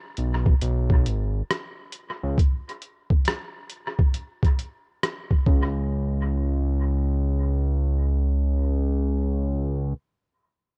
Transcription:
0, 0, Header, 1, 3, 480
1, 0, Start_track
1, 0, Tempo, 882353
1, 1292, Time_signature, 4, 2, 24, 8
1, 5864, End_track
2, 0, Start_track
2, 0, Title_t, "Analog synth bass"
2, 0, Program_c, 0, 38
2, 99, Note_on_c, 0, 35, 81
2, 295, Note_off_c, 0, 35, 0
2, 338, Note_on_c, 0, 35, 99
2, 578, Note_on_c, 0, 32, 88
2, 586, Note_off_c, 0, 35, 0
2, 774, Note_off_c, 0, 32, 0
2, 1215, Note_on_c, 0, 37, 97
2, 1295, Note_off_c, 0, 37, 0
2, 2975, Note_on_c, 0, 37, 92
2, 5406, Note_off_c, 0, 37, 0
2, 5864, End_track
3, 0, Start_track
3, 0, Title_t, "Drums"
3, 92, Note_on_c, 9, 42, 56
3, 147, Note_off_c, 9, 42, 0
3, 250, Note_on_c, 9, 36, 78
3, 304, Note_off_c, 9, 36, 0
3, 334, Note_on_c, 9, 42, 72
3, 389, Note_off_c, 9, 42, 0
3, 489, Note_on_c, 9, 36, 79
3, 543, Note_off_c, 9, 36, 0
3, 577, Note_on_c, 9, 42, 67
3, 631, Note_off_c, 9, 42, 0
3, 819, Note_on_c, 9, 37, 95
3, 820, Note_on_c, 9, 42, 69
3, 873, Note_off_c, 9, 37, 0
3, 874, Note_off_c, 9, 42, 0
3, 1046, Note_on_c, 9, 42, 64
3, 1100, Note_off_c, 9, 42, 0
3, 1293, Note_on_c, 9, 36, 90
3, 1301, Note_on_c, 9, 42, 64
3, 1348, Note_off_c, 9, 36, 0
3, 1355, Note_off_c, 9, 42, 0
3, 1463, Note_on_c, 9, 42, 37
3, 1517, Note_off_c, 9, 42, 0
3, 1532, Note_on_c, 9, 42, 53
3, 1587, Note_off_c, 9, 42, 0
3, 1687, Note_on_c, 9, 36, 86
3, 1742, Note_off_c, 9, 36, 0
3, 1768, Note_on_c, 9, 42, 60
3, 1783, Note_on_c, 9, 37, 103
3, 1823, Note_off_c, 9, 42, 0
3, 1837, Note_off_c, 9, 37, 0
3, 2011, Note_on_c, 9, 42, 53
3, 2065, Note_off_c, 9, 42, 0
3, 2170, Note_on_c, 9, 36, 82
3, 2224, Note_off_c, 9, 36, 0
3, 2253, Note_on_c, 9, 42, 71
3, 2307, Note_off_c, 9, 42, 0
3, 2409, Note_on_c, 9, 36, 83
3, 2418, Note_on_c, 9, 42, 34
3, 2463, Note_off_c, 9, 36, 0
3, 2473, Note_off_c, 9, 42, 0
3, 2496, Note_on_c, 9, 42, 66
3, 2550, Note_off_c, 9, 42, 0
3, 2738, Note_on_c, 9, 37, 93
3, 2739, Note_on_c, 9, 42, 72
3, 2792, Note_off_c, 9, 37, 0
3, 2793, Note_off_c, 9, 42, 0
3, 2887, Note_on_c, 9, 36, 71
3, 2941, Note_off_c, 9, 36, 0
3, 2973, Note_on_c, 9, 36, 100
3, 3027, Note_off_c, 9, 36, 0
3, 5864, End_track
0, 0, End_of_file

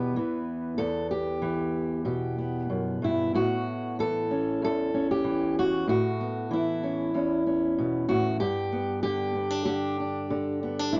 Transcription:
0, 0, Header, 1, 2, 480
1, 0, Start_track
1, 0, Tempo, 634249
1, 602, Time_signature, 4, 2, 24, 8
1, 8323, End_track
2, 0, Start_track
2, 0, Title_t, "Steel-string acoustic guitar"
2, 0, Program_c, 0, 25
2, 0, Note_on_c, 0, 40, 74
2, 0, Note_on_c, 0, 47, 57
2, 0, Note_on_c, 0, 52, 58
2, 0, Note_on_c, 0, 59, 45
2, 0, Note_on_c, 0, 67, 88
2, 0, Note_on_c, 0, 71, 92
2, 119, Note_off_c, 0, 67, 0
2, 120, Note_off_c, 0, 52, 0
2, 123, Note_on_c, 0, 52, 60
2, 124, Note_off_c, 0, 47, 0
2, 568, Note_off_c, 0, 40, 0
2, 589, Note_on_c, 0, 69, 90
2, 594, Note_off_c, 0, 71, 0
2, 596, Note_on_c, 0, 40, 73
2, 835, Note_off_c, 0, 69, 0
2, 838, Note_on_c, 0, 67, 68
2, 1069, Note_off_c, 0, 52, 0
2, 1072, Note_on_c, 0, 52, 57
2, 1546, Note_off_c, 0, 67, 0
2, 1550, Note_on_c, 0, 47, 56
2, 1555, Note_on_c, 0, 67, 45
2, 1800, Note_off_c, 0, 59, 0
2, 1803, Note_on_c, 0, 59, 42
2, 2037, Note_off_c, 0, 40, 0
2, 2040, Note_on_c, 0, 42, 58
2, 2282, Note_off_c, 0, 42, 0
2, 2284, Note_off_c, 0, 67, 0
2, 2285, Note_on_c, 0, 43, 52
2, 2303, Note_on_c, 0, 64, 79
2, 2494, Note_off_c, 0, 47, 0
2, 2528, Note_off_c, 0, 43, 0
2, 2531, Note_on_c, 0, 45, 73
2, 2536, Note_off_c, 0, 64, 0
2, 2539, Note_on_c, 0, 66, 93
2, 2561, Note_off_c, 0, 52, 0
2, 3016, Note_off_c, 0, 66, 0
2, 3019, Note_on_c, 0, 52, 57
2, 3028, Note_on_c, 0, 69, 95
2, 3257, Note_off_c, 0, 59, 0
2, 3260, Note_on_c, 0, 61, 40
2, 3494, Note_off_c, 0, 45, 0
2, 3497, Note_on_c, 0, 40, 58
2, 3501, Note_off_c, 0, 69, 0
2, 3515, Note_on_c, 0, 69, 94
2, 3731, Note_off_c, 0, 61, 0
2, 3740, Note_on_c, 0, 61, 42
2, 3863, Note_off_c, 0, 69, 0
2, 3866, Note_on_c, 0, 67, 88
2, 3956, Note_off_c, 0, 52, 0
2, 3966, Note_on_c, 0, 52, 58
2, 4218, Note_off_c, 0, 67, 0
2, 4229, Note_on_c, 0, 66, 82
2, 4418, Note_off_c, 0, 52, 0
2, 4423, Note_off_c, 0, 40, 0
2, 4425, Note_off_c, 0, 61, 0
2, 4446, Note_on_c, 0, 45, 74
2, 4450, Note_off_c, 0, 66, 0
2, 4460, Note_on_c, 0, 66, 87
2, 4696, Note_on_c, 0, 59, 39
2, 4925, Note_on_c, 0, 52, 58
2, 4933, Note_off_c, 0, 66, 0
2, 4945, Note_on_c, 0, 64, 75
2, 5171, Note_on_c, 0, 61, 45
2, 5400, Note_off_c, 0, 61, 0
2, 5405, Note_off_c, 0, 45, 0
2, 5405, Note_on_c, 0, 40, 58
2, 5409, Note_on_c, 0, 61, 47
2, 5641, Note_off_c, 0, 61, 0
2, 5650, Note_on_c, 0, 61, 42
2, 5891, Note_on_c, 0, 47, 60
2, 6117, Note_off_c, 0, 64, 0
2, 6120, Note_on_c, 0, 66, 91
2, 6125, Note_off_c, 0, 47, 0
2, 6131, Note_on_c, 0, 45, 57
2, 6329, Note_off_c, 0, 52, 0
2, 6330, Note_off_c, 0, 40, 0
2, 6334, Note_off_c, 0, 61, 0
2, 6354, Note_off_c, 0, 66, 0
2, 6356, Note_on_c, 0, 43, 76
2, 6357, Note_on_c, 0, 67, 101
2, 6364, Note_off_c, 0, 45, 0
2, 6599, Note_off_c, 0, 59, 0
2, 6602, Note_on_c, 0, 59, 42
2, 6824, Note_off_c, 0, 67, 0
2, 6833, Note_on_c, 0, 67, 102
2, 6837, Note_on_c, 0, 50, 59
2, 7066, Note_off_c, 0, 59, 0
2, 7075, Note_on_c, 0, 59, 41
2, 7194, Note_off_c, 0, 59, 0
2, 7194, Note_on_c, 0, 62, 37
2, 7297, Note_off_c, 0, 67, 0
2, 7300, Note_off_c, 0, 50, 0
2, 7306, Note_on_c, 0, 67, 93
2, 7309, Note_on_c, 0, 50, 57
2, 7555, Note_off_c, 0, 62, 0
2, 7567, Note_on_c, 0, 62, 45
2, 7789, Note_off_c, 0, 50, 0
2, 7798, Note_on_c, 0, 50, 63
2, 8041, Note_off_c, 0, 62, 0
2, 8044, Note_on_c, 0, 59, 42
2, 8168, Note_off_c, 0, 59, 0
2, 8168, Note_on_c, 0, 62, 38
2, 8250, Note_off_c, 0, 43, 0
2, 8266, Note_off_c, 0, 67, 0
2, 8269, Note_on_c, 0, 64, 86
2, 8285, Note_off_c, 0, 62, 0
2, 8290, Note_on_c, 0, 43, 73
2, 8322, Note_off_c, 0, 64, 0
2, 8323, Note_off_c, 0, 43, 0
2, 8323, Note_off_c, 0, 50, 0
2, 8323, End_track
0, 0, End_of_file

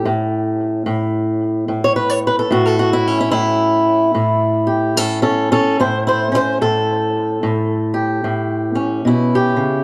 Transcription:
0, 0, Header, 1, 2, 480
1, 0, Start_track
1, 0, Tempo, 819672
1, 29, Time_signature, 4, 2, 24, 8
1, 5761, End_track
2, 0, Start_track
2, 0, Title_t, "Steel-string acoustic guitar"
2, 0, Program_c, 0, 25
2, 0, Note_on_c, 0, 61, 51
2, 32, Note_on_c, 0, 45, 71
2, 502, Note_off_c, 0, 45, 0
2, 504, Note_on_c, 0, 45, 75
2, 935, Note_off_c, 0, 61, 0
2, 983, Note_off_c, 0, 45, 0
2, 986, Note_on_c, 0, 45, 60
2, 1079, Note_on_c, 0, 73, 84
2, 1145, Note_off_c, 0, 73, 0
2, 1148, Note_on_c, 0, 71, 83
2, 1227, Note_off_c, 0, 71, 0
2, 1227, Note_on_c, 0, 73, 89
2, 1281, Note_off_c, 0, 73, 0
2, 1330, Note_on_c, 0, 71, 81
2, 1397, Note_off_c, 0, 71, 0
2, 1399, Note_on_c, 0, 69, 83
2, 1465, Note_off_c, 0, 45, 0
2, 1468, Note_on_c, 0, 45, 78
2, 1477, Note_on_c, 0, 66, 73
2, 1548, Note_off_c, 0, 69, 0
2, 1555, Note_on_c, 0, 69, 91
2, 1628, Note_off_c, 0, 66, 0
2, 1635, Note_on_c, 0, 66, 75
2, 1714, Note_off_c, 0, 69, 0
2, 1717, Note_on_c, 0, 64, 89
2, 1800, Note_off_c, 0, 66, 0
2, 1800, Note_on_c, 0, 61, 81
2, 1864, Note_off_c, 0, 64, 0
2, 1877, Note_on_c, 0, 64, 86
2, 1934, Note_off_c, 0, 64, 0
2, 1941, Note_on_c, 0, 64, 100
2, 1947, Note_off_c, 0, 45, 0
2, 1950, Note_on_c, 0, 45, 72
2, 2373, Note_off_c, 0, 61, 0
2, 2425, Note_off_c, 0, 45, 0
2, 2428, Note_on_c, 0, 45, 68
2, 2734, Note_on_c, 0, 67, 45
2, 2908, Note_off_c, 0, 67, 0
2, 2908, Note_on_c, 0, 61, 80
2, 2911, Note_off_c, 0, 45, 0
2, 2912, Note_off_c, 0, 64, 0
2, 2912, Note_on_c, 0, 69, 87
2, 2913, Note_on_c, 0, 45, 67
2, 3051, Note_off_c, 0, 61, 0
2, 3055, Note_off_c, 0, 69, 0
2, 3058, Note_on_c, 0, 61, 71
2, 3062, Note_on_c, 0, 69, 78
2, 3224, Note_off_c, 0, 61, 0
2, 3226, Note_off_c, 0, 69, 0
2, 3231, Note_on_c, 0, 61, 84
2, 3236, Note_on_c, 0, 69, 94
2, 3390, Note_off_c, 0, 61, 0
2, 3391, Note_off_c, 0, 45, 0
2, 3393, Note_off_c, 0, 69, 0
2, 3394, Note_on_c, 0, 64, 70
2, 3399, Note_on_c, 0, 45, 75
2, 3399, Note_on_c, 0, 72, 83
2, 3440, Note_off_c, 0, 64, 0
2, 3552, Note_off_c, 0, 72, 0
2, 3554, Note_on_c, 0, 64, 73
2, 3563, Note_on_c, 0, 72, 74
2, 3635, Note_off_c, 0, 64, 0
2, 3700, Note_on_c, 0, 61, 51
2, 3716, Note_off_c, 0, 72, 0
2, 3716, Note_on_c, 0, 64, 75
2, 3722, Note_off_c, 0, 64, 0
2, 3725, Note_on_c, 0, 72, 80
2, 3856, Note_off_c, 0, 61, 0
2, 3866, Note_off_c, 0, 45, 0
2, 3873, Note_off_c, 0, 72, 0
2, 3873, Note_on_c, 0, 45, 66
2, 3875, Note_on_c, 0, 69, 87
2, 4344, Note_off_c, 0, 45, 0
2, 4351, Note_on_c, 0, 45, 71
2, 4648, Note_on_c, 0, 67, 47
2, 4819, Note_off_c, 0, 45, 0
2, 4826, Note_on_c, 0, 45, 60
2, 4832, Note_off_c, 0, 69, 0
2, 5126, Note_on_c, 0, 61, 47
2, 5297, Note_off_c, 0, 45, 0
2, 5299, Note_on_c, 0, 47, 59
2, 5313, Note_on_c, 0, 64, 75
2, 5469, Note_off_c, 0, 67, 0
2, 5476, Note_on_c, 0, 67, 74
2, 5598, Note_off_c, 0, 47, 0
2, 5601, Note_on_c, 0, 49, 63
2, 5761, Note_off_c, 0, 49, 0
2, 5761, Note_off_c, 0, 61, 0
2, 5761, Note_off_c, 0, 64, 0
2, 5761, Note_off_c, 0, 67, 0
2, 5761, End_track
0, 0, End_of_file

